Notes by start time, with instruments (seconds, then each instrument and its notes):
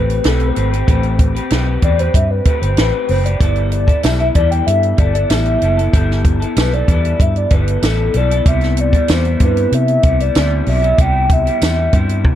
Already playing: fingered electric bass A1, clean electric guitar A3 C4 G4 B4, soft synth lead B4
0.10 closed hi-hat
0.24 fingered electric bass B1, clean electric guitar A3 C4 G4 B4, soft synth lead A4, snare, closed hi-hat
0.40 closed hi-hat
0.48 soft synth lead C5
0.55 fingered electric bass G#1, clean electric guitar A3 C4 G4 B4, closed hi-hat
0.71 clean electric guitar C4 G4 B4, closed hi-hat
0.87 fingered electric bass A1, clean electric guitar A3 C4 G4 B4, kick, closed hi-hat
1.03 closed hi-hat
1.19 kick, closed hi-hat
1.35 clean electric guitar C4 G4 B4, closed hi-hat
1.50 fingered electric bass B1, clean electric guitar A3 C4 G4 B4, snare, closed hi-hat
1.66 clean electric guitar C4 G4 B4
1.82 fingered electric bass E2, clean electric guitar A3 C4 G4 B4, soft synth lead D5, kick, closed hi-hat
1.98 clean electric guitar C4 G4 B4, soft synth lead C5, closed hi-hat
2.14 fingered electric bass G2, soft synth lead E5, kick, closed hi-hat
2.31 soft synth lead B4
2.45 clean electric guitar A3 C4 G4 B4, kick, closed hi-hat
2.61 fingered electric bass G1, clean electric guitar C4 G4 B4, soft synth lead C5, closed hi-hat
2.77 fingered electric bass A1, clean electric guitar A3 C4 G4 B4, soft synth lead B4, snare, closed hi-hat
3.09 fingered electric bass F#1, clean electric guitar A3 C4 G4 B4, soft synth lead C5, open hi-hat
3.24 clean electric guitar C4 G4 B4, soft synth lead D5, closed hi-hat
3.40 fingered electric bass G1, clean electric guitar G3 B3 E4 A4, kick, closed hi-hat
3.56 closed hi-hat
3.72 soft synth lead D5, closed hi-hat
3.87 clean electric guitar B3 E4 A4, kick, closed hi-hat
4.03 fingered electric bass B1, clean electric guitar G3 B3 E4 A4, soft synth lead E5, snare, closed hi-hat, tambourine
4.18 clean electric guitar B3 E4 A4, soft synth lead E5, closed hi-hat
4.34 fingered electric bass E2, clean electric guitar G3 B3 E4 A4, soft synth lead D5, kick, closed hi-hat
4.51 soft synth lead G5, closed hi-hat
4.67 fingered electric bass G2, soft synth lead E5, closed hi-hat
4.83 closed hi-hat
4.97 fingered electric bass G1, clean electric guitar G3 B3 E4 A4, soft synth lead D5, kick, closed hi-hat
5.13 clean electric guitar B3 E4 A4, soft synth lead D5, closed hi-hat
5.29 fingered electric bass A1, clean electric guitar G3 B3 E4 A4, soft synth lead E5, snare, closed hi-hat, tambourine
5.46 closed hi-hat
5.61 fingered electric bass F#1, clean electric guitar G3 B3 E4 A4, closed hi-hat
5.77 clean electric guitar B3 E4 A4, closed hi-hat
5.93 fingered electric bass G1, clean electric guitar G3 B3 E4 A4, kick, closed hi-hat
6.11 snare
6.25 kick, closed hi-hat
6.40 clean electric guitar B3 E4 A4, closed hi-hat
6.56 fingered electric bass B1, clean electric guitar G3 B3 E4 A4, soft synth lead B4, snare, closed hi-hat, tambourine
6.72 clean electric guitar B3 E4 A4, soft synth lead D5, closed hi-hat
6.88 fingered electric bass E2, clean electric guitar G3 B3 E4 A4, soft synth lead D5, kick, closed hi-hat
7.05 closed hi-hat
7.20 fingered electric bass G2, soft synth lead E5, kick, closed hi-hat
7.36 soft synth lead D5, closed hi-hat
7.50 fingered electric bass G1, clean electric guitar G3 B3 E4 A4, soft synth lead B4, kick, closed hi-hat
7.68 closed hi-hat
7.82 fingered electric bass A1, clean electric guitar G3 B3 E4 A4, soft synth lead A4, snare, closed hi-hat, tambourine
8.14 fingered electric bass B1, clean electric guitar G3 B3 E4 A4, soft synth lead D5, closed hi-hat
8.30 clean electric guitar B3 E4 A4, closed hi-hat
8.46 fingered electric bass C2, clean electric guitar C3 G3 B3 E4, soft synth lead E5, kick, closed hi-hat
8.61 snare, closed hi-hat
8.77 soft synth lead D5, closed hi-hat
8.93 clean electric guitar G3 B3 E4, kick, closed hi-hat
9.08 fingered electric bass E2, clean electric guitar C3 G3 B3 E4, soft synth lead C5, snare, closed hi-hat, tambourine
9.24 clean electric guitar G3 B3 E4, closed hi-hat
9.40 fingered electric bass G2, clean electric guitar C3 G3 B3 E4, soft synth lead B4, kick, closed hi-hat
9.57 closed hi-hat
9.72 fingered electric bass C3, soft synth lead E5, closed hi-hat
9.88 closed hi-hat
10.03 fingered electric bass C2, clean electric guitar C3 G3 B3 E4, kick, closed hi-hat
10.20 clean electric guitar G3 B3 E4, soft synth lead D5, closed hi-hat
10.35 fingered electric bass D2, clean electric guitar C3 G3 B3 E4, snare, closed hi-hat, tambourine
10.66 fingered electric bass B1, clean electric guitar C3 G3 B3 E4, soft synth lead E5, open hi-hat
10.82 clean electric guitar G3 B3 E4, closed hi-hat
10.98 fingered electric bass C2, clean electric guitar C3 G3 B3 E4, soft synth lead G5, kick, closed hi-hat
11.30 soft synth lead E5, kick, closed hi-hat
11.46 clean electric guitar G3 B3 E4, closed hi-hat
11.61 fingered electric bass E2, clean electric guitar C3 G3 B3 E4, snare, closed hi-hat, tambourine
11.77 clean electric guitar G3 B3 E4
11.93 fingered electric bass G2, clean electric guitar C3 G3 B3 E4, kick, closed hi-hat
12.09 closed hi-hat
12.25 fingered electric bass C3, kick